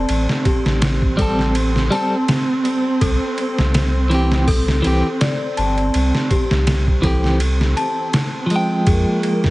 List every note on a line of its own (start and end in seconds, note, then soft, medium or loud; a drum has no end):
0.00 8.88 C4 medium
0.00 1.19 A4 loud
0.00 3.03 D5 medium
0.00 0.42 A5 medium
0.09 0.27 A1 medium
0.09 ride medium
0.29 snare soft
0.45 1.15 G4 medium
0.45 kick medium
0.45 ride medium
0.66 1.89 A1 medium
0.66 snare medium
0.82 snare loud
0.82 ride medium
1.02 kick loud
1.17 1.52 G3 medium
1.17 1.53 C4 medium
1.17 1.88 A4 medium
1.17 kick medium
1.17 ride medium
1.22 1.54 A4 medium
1.39 snare soft
1.55 ride medium
1.76 snare soft
1.91 2.14 G3 medium
1.91 2.15 C4 medium
1.91 2.27 A5 medium
1.91 ride medium
1.95 2.16 A4 medium
2.28 snare loud
2.28 ride medium
2.65 ride medium
3.01 3.19 C2 medium
3.01 3.24 A4 medium
3.01 kick loud
3.01 ride medium
3.38 ride medium
3.58 4.82 C2 medium
3.58 snare soft
3.74 snare loud
3.74 ride medium
4.10 4.45 E3 medium
4.10 4.46 C4 medium
4.10 ride medium
4.14 4.47 G4 medium
4.32 snare soft
4.48 5.18 A4 loud
4.48 kick loud
4.48 open hi-hat medium
4.68 snare soft
4.82 5.03 C2 medium
4.82 5.06 E3 medium
4.82 5.07 C4 medium
4.82 ride medium
4.87 5.09 G4 medium
5.21 5.54 D5 medium
5.21 snare loud
5.21 ride medium
5.57 5.90 G1 medium
5.57 6.27 A5 medium
5.57 ride medium
5.78 ride soft
5.94 6.12 C2 loud
5.94 ride medium
6.15 snare soft
6.31 7.00 G4 medium
6.31 kick medium
6.31 ride medium
6.51 7.74 C2 medium
6.51 snare soft
6.67 snare loud
6.67 ride medium
6.87 kick medium
7.02 7.37 E3 medium
7.02 7.39 C4 medium
7.02 7.74 A4 medium
7.02 kick medium
7.02 ride medium
7.07 7.40 G4 medium
7.24 snare soft
7.40 ride medium
7.61 snare soft
7.77 8.12 A5 medium
7.77 ride medium
8.13 snare loud
8.13 ride medium
8.46 9.50 F3 medium
8.46 ride medium
8.51 9.50 G#3 medium
8.56 9.50 G5 medium
8.87 9.05 F2 medium
8.87 9.50 A#3 medium
8.87 9.09 G#4 medium
8.87 kick loud
8.87 ride medium
9.23 ride medium
9.44 9.50 F2 medium
9.44 snare soft